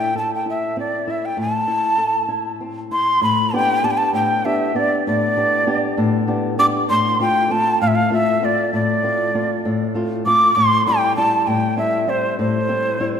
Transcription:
0.00 1.35 A2 medium
0.00 0.15 E4 medium
0.00 0.15 G5 medium
0.15 0.45 A4 medium
0.15 0.31 A5 medium
0.35 0.47 G5 medium
0.46 0.76 E4 medium
0.46 0.77 E5 medium
0.77 1.07 C4 medium
0.77 1.12 D5 medium
1.07 1.37 E4 medium
1.07 1.27 E5 medium
1.25 1.40 G5 medium
1.37 3.18 A2 medium
1.41 2.59 A5 medium
1.68 1.98 E4 medium
1.98 2.28 A4 medium
2.29 2.59 E4 medium
2.61 2.91 C4 medium
2.91 3.21 E4 medium
2.91 3.21 C6 loud
3.21 3.81 A2 medium
3.21 3.57 B5 loud
3.53 3.82 B3 medium
3.53 3.83 D4 soft
3.53 3.83 G4 medium
3.53 3.86 G5 loud
3.83 4.32 B3 medium
3.83 4.33 D4 soft
3.83 4.33 G4 medium
3.83 3.92 A5 loud
3.91 3.99 G5 medium
3.97 4.14 A5 loud
4.13 4.73 A2 medium
4.13 4.47 G5 medium
4.45 4.74 B3 medium
4.45 4.74 D4 soft
4.45 4.75 G4 medium
4.45 4.77 E5 medium
4.75 5.24 B3 medium
4.75 5.24 D4 soft
4.75 5.25 G4 medium
4.75 5.06 D5 medium
5.07 5.66 A2 medium
5.07 6.25 D5 medium
5.37 5.65 B3 medium
5.37 5.66 D4 soft
5.37 5.66 G4 medium
5.67 6.16 B3 medium
5.67 6.16 D4 medium
5.67 6.16 G4 medium
5.97 6.57 A2 medium
6.28 6.57 B3 medium
6.28 6.58 D4 soft
6.28 6.58 G4 medium
6.58 6.83 B3 medium
6.58 6.84 D4 soft
6.58 6.84 G4 medium
6.58 6.66 D6 loud
6.90 7.49 A2 medium
6.90 7.18 C6 loud
7.20 7.49 A3 medium
7.20 7.49 C4 soft
7.20 7.50 F4 medium
7.20 7.53 G5 loud
7.50 7.99 A3 medium
7.50 7.99 C4 medium
7.50 8.00 F4 medium
7.50 7.81 A5 loud
7.82 8.41 A2 medium
7.82 7.89 F5 medium
7.87 7.97 E5 medium
7.95 8.12 F5 medium
8.10 8.41 A3 medium
8.10 8.41 C4 medium
8.10 8.42 F4 medium
8.10 8.46 E5 loud
8.42 8.91 A3 medium
8.42 8.91 C4 soft
8.42 8.91 F4 medium
8.42 8.74 D5 medium
8.73 9.32 A2 medium
8.73 9.92 D5 medium
9.03 9.33 A3 medium
9.03 9.33 C4 soft
9.03 9.34 F4 medium
9.34 9.83 A3 medium
9.34 9.83 C4 soft
9.34 9.83 F4 medium
9.65 10.24 A2 medium
9.95 10.25 A3 medium
9.95 10.25 C4 soft
9.95 10.26 F4 medium
10.26 10.50 A3 medium
10.26 10.50 C4 soft
10.26 10.51 F4 medium
10.26 10.57 D6 loud
10.55 11.15 A2 medium
10.55 10.86 C6 loud
10.86 11.16 G3 medium
10.86 11.16 C4 soft
10.86 11.17 E4 medium
10.86 11.15 G5 loud
11.16 11.66 G3 medium
11.16 11.66 C4 soft
11.16 11.66 E4 medium
11.16 11.49 A5 loud
11.47 12.06 A2 medium
11.47 11.78 G5 medium
11.76 12.06 G3 medium
11.76 12.06 C4 soft
11.76 12.07 E4 medium
11.76 12.11 E5 medium
12.07 12.57 G3 medium
12.07 12.56 C4 soft
12.07 12.57 E4 medium
12.07 12.39 C5 medium
12.39 12.98 A2 medium
12.39 13.20 C5 medium
12.69 12.99 G3 medium
12.69 12.99 C4 medium
12.69 12.99 E4 medium
13.00 13.20 G3 medium
13.00 13.20 C4 soft
13.00 13.20 E4 medium

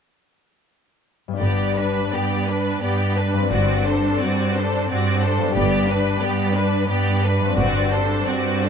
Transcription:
1.28 3.32 G2 soft
1.28 3.52 B3 soft
1.33 3.41 D4 soft
1.33 3.52 G4 soft
1.39 2.01 G1 soft
1.39 2.04 G2 soft
1.39 1.74 B3 soft
1.39 1.74 G4 soft
1.39 1.74 D5 soft
1.76 2.13 D4 soft
1.76 2.13 B4 soft
2.12 2.74 G2 soft
2.12 2.48 B3 soft
2.12 2.48 G4 soft
2.12 2.47 D5 soft
2.46 2.82 D4 soft
2.46 2.82 B4 soft
2.46 2.83 B4 soft
2.81 3.43 G2 soft
2.81 3.15 B3 soft
2.81 3.14 G4 soft
2.81 3.14 D5 soft
3.15 3.51 D4 soft
3.15 3.51 B4 soft
3.15 3.52 B4 soft
3.34 5.37 G2 soft
3.38 5.52 C4 soft
3.43 5.46 D4 soft
3.47 4.12 G2 soft
3.47 5.57 F#4 soft
3.47 3.83 D5 soft
3.52 4.10 G1 soft
3.52 3.83 C4 soft
3.52 3.84 F#4 soft
3.85 4.20 D4 soft
3.85 4.21 A4 soft
3.85 4.21 C5 soft
4.20 4.82 G2 soft
4.20 4.55 C4 soft
4.20 4.55 F#4 soft
4.20 4.55 D5 soft
4.55 4.90 D4 soft
4.55 4.90 A4 soft
4.55 4.90 C5 soft
4.89 5.48 G2 soft
4.89 5.21 C4 soft
4.89 5.21 F#4 soft
4.89 5.21 D5 soft
5.22 5.56 D4 soft
5.22 5.56 A4 soft
5.22 5.56 C5 soft
5.38 7.39 G2 soft
5.42 7.54 B3 soft
5.47 7.48 D4 soft
5.52 7.59 G4 soft
5.52 5.86 G4 soft
5.56 6.12 G1 soft
5.56 6.14 G2 soft
5.56 5.86 B3 soft
5.56 5.86 D5 soft
5.88 6.22 D4 soft
5.88 6.22 B4 soft
6.21 6.81 G2 soft
6.21 6.55 B3 soft
6.21 6.55 G4 soft
6.21 6.55 D5 soft
6.54 6.88 D4 soft
6.54 6.89 B4 soft
6.89 7.50 G2 soft
6.89 7.21 B3 soft
6.89 7.21 G4 soft
6.89 7.21 D5 soft
7.23 7.58 D4 soft
7.23 7.58 B4 soft
7.41 8.69 G2 soft
7.45 8.69 C4 soft
7.50 8.69 D4 soft
7.54 8.19 G2 soft
7.54 8.69 F#4 soft
7.54 7.90 F#4 soft
7.54 7.90 D5 soft
7.58 8.17 G1 soft
7.58 7.90 C4 soft
7.92 8.28 D4 soft
7.92 8.28 A4 soft
7.92 8.28 C5 soft
8.27 8.69 G2 soft
8.27 8.64 C4 soft
8.27 8.64 F#4 soft
8.27 8.64 D5 soft
8.63 8.69 D4 soft
8.63 8.69 A4 soft
8.63 8.69 C5 soft

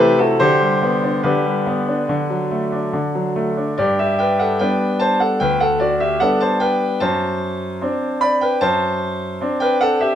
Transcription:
0.00 0.38 C3 medium
0.00 0.31 A3 medium
0.00 0.17 G4 medium
0.00 0.18 B4 medium
0.19 0.40 E4 soft
0.19 0.39 F#4 medium
0.19 0.40 A4 medium
0.40 1.23 D3 medium
0.40 1.21 G4 medium
0.40 1.25 C5 medium
0.61 0.95 G3 soft
0.82 1.16 B3 soft
1.04 1.37 D4 soft
1.23 2.06 D3 medium
1.23 2.89 G4 soft
1.23 2.93 B4 medium
1.46 1.79 G3 soft
1.66 2.00 B3 soft
1.88 2.09 D4 soft
2.09 2.92 D3 medium
2.30 2.64 F#3 soft
2.51 2.85 A3 soft
2.72 3.06 D4 soft
2.93 3.75 D3 medium
3.15 3.49 F#3 soft
3.36 3.69 A3 soft
3.57 3.78 D4 soft
3.78 4.57 G2 medium
3.78 3.98 G4 medium
3.78 3.98 D5 medium
3.99 4.18 G4 soft
3.99 4.19 E5 medium
4.19 4.38 B4 soft
4.19 4.39 G5 medium
4.39 4.59 A4 soft
4.39 4.59 F#5 medium
4.59 5.36 G3 soft
4.59 5.36 B3 soft
4.59 5.37 D4 soft
4.59 4.98 B4 medium
4.59 5.00 G5 medium
5.00 5.19 C5 medium
5.00 5.20 A5 medium
5.20 5.39 A4 soft
5.20 5.40 F#5 medium
5.40 6.18 D2 medium
5.40 5.59 B4 medium
5.40 5.60 G5 medium
5.60 5.79 A4 medium
5.60 5.80 F#5 medium
5.80 5.99 F#4 medium
5.80 6.00 D5 medium
6.00 6.19 G4 medium
6.00 6.20 E5 medium
6.20 6.97 G3 soft
6.20 6.97 B3 soft
6.20 6.97 D4 soft
6.20 6.39 A4 medium
6.20 6.40 F#5 medium
6.41 6.60 C5 medium
6.41 6.60 A5 medium
6.60 6.98 B4 medium
6.60 7.00 G5 medium
7.00 7.79 F#2 medium
7.00 8.18 C5 medium
7.00 8.21 A5 medium
7.81 8.58 C4 soft
7.81 8.58 D4 soft
8.21 8.40 D5 medium
8.21 8.41 B5 medium
8.41 8.61 B4 soft
8.41 8.61 G5 medium
8.61 9.39 F#2 medium
8.61 9.57 C5 medium
8.61 9.60 A5 medium
9.41 10.15 C4 soft
9.41 10.15 D4 medium
9.60 9.80 B4 medium
9.60 9.80 G5 medium
9.81 10.00 A4 medium
9.81 10.00 F#5 medium
10.00 10.15 G4 medium
10.00 10.15 E5 medium

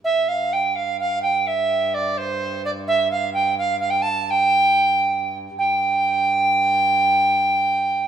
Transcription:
0.04 5.56 G2 medium
0.04 0.30 E5 medium
0.28 0.55 F5 medium
0.53 0.77 G5 medium
0.76 0.99 F5 medium
1.00 1.22 F5 medium
1.22 1.48 G5 medium
1.47 1.96 E5 medium
1.94 2.19 D5 medium
2.18 2.64 C5 medium
2.65 2.71 D5 medium
2.88 3.09 E5 medium
3.11 3.32 F5 medium
3.34 3.55 G5 medium
3.58 3.79 F5 medium
3.80 3.92 F5 medium
3.90 4.04 G5 medium
4.02 4.27 A5 medium
4.27 5.37 G5 loud
4.27 4.32 A5 medium
5.56 8.08 G2 medium
5.56 8.08 G5 medium

